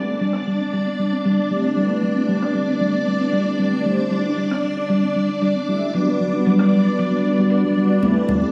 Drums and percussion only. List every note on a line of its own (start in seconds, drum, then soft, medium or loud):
0.20 closed hi-hat medium
0.33 cross-stick medium
0.33 closed hi-hat medium
0.59 closed hi-hat medium
0.73 closed hi-hat medium
0.99 shaker medium
1.11 closed hi-hat soft
1.11 shaker medium
1.25 closed hi-hat medium
1.51 shaker medium
1.76 closed hi-hat medium
1.89 closed hi-hat soft
2.03 shaker medium
2.17 shaker medium
2.28 closed hi-hat medium
2.42 cross-stick medium
2.42 closed hi-hat medium
2.55 shaker medium
2.68 closed hi-hat medium
2.80 closed hi-hat medium
3.20 closed hi-hat soft
3.33 closed hi-hat medium
3.60 shaker medium
3.85 closed hi-hat medium
3.85 shaker soft
3.99 closed hi-hat soft
4.12 shaker medium
4.37 closed hi-hat medium
4.51 cross-stick medium
4.51 closed hi-hat medium
4.64 shaker medium
4.77 closed hi-hat medium
4.77 shaker soft
4.89 closed hi-hat medium
4.89 shaker soft
5.16 shaker medium
5.29 closed hi-hat soft
5.29 shaker soft
5.42 closed hi-hat medium
5.69 shaker medium
5.82 shaker soft
5.94 closed hi-hat medium
5.94 shaker soft
6.07 closed hi-hat soft
6.21 shaker medium
6.33 shaker medium
6.46 closed hi-hat medium
6.46 shaker soft
6.59 cross-stick medium
6.59 closed hi-hat medium
6.73 shaker medium
6.86 closed hi-hat medium
6.86 shaker medium
6.99 closed hi-hat medium
6.99 shaker soft
7.25 shaker medium
7.38 closed hi-hat soft
7.38 shaker medium
7.50 closed hi-hat medium
7.50 shaker soft
7.78 shaker medium
7.91 shaker medium
8.02 closed hi-hat medium
8.02 high conga medium
8.02 shaker soft
8.16 closed hi-hat soft
8.29 low conga medium
8.29 shaker medium
8.42 high conga medium
8.42 shaker medium